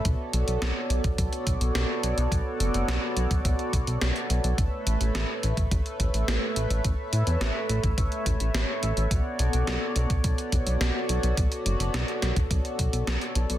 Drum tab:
HH |x-xxx-xxxxxxx-xx|x-xxx-xxxxxxxxxx|x-xxx-xxxxxxx-xx|x-xxx-xxxxxxx-xx|
SD |----o-------o---|----o-------o---|----o-------o---|----o-------o---|
BD |o------oo-o-----|o------oo-o-----|o------oo-o-----|o------oo-o-----|

HH |x-xxx-xxxxxxx-xx|xxxxxxxxxxxxxxxx|
SD |----o-------o---|----o-o-----o---|
BD |o------oo-o-----|o------oo-o-----|